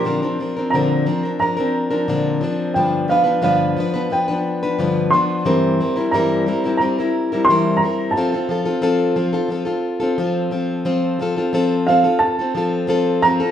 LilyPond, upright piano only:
\new Staff \with { instrumentName = "Upright piano" } { \time 4/4 \key bes \major \tempo 4 = 89 c'''8 r8 bes''4 bes''2 | g''8 f''8 f''4 g''4 r8 c'''8~ | c'''4 bes''4 bes''4 c'''8 bes''8 | a''2. r4 |
r4. f''8 a''4 r8 bes''8 | }